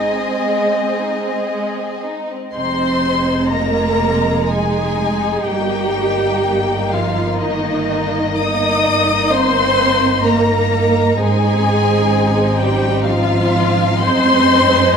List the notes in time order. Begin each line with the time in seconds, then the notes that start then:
Already playing: G#1 G#3 C4 D#4 G#4 D#5 G#5
0.20 C4
0.47 G#3
0.72 C4
0.99 D#4
1.26 C4
1.53 G#3
1.78 C4
2.05 D#4
2.32 C4
2.54 F1 G#3 C4 D#4 C5 C6
3.51 A#3 A#4 A#5
4.48 G#3 G#4 G#5
5.46 G1 G3 A#3 G4 G5
6.91 F3 F4 F5
7.39 D#3 D#4 D#5
8.38 D#4 D#5 D#6
9.32 C4 C5 C6
10.24 A#3 A#4 A#5
11.17 G#1 G#3 C4 G#4 G#5
12.57 G3 G4 G5
13.04 F3 F4 F5
14.01 F#2 G#3 C4 D#4 C5 C6
14.94 A#5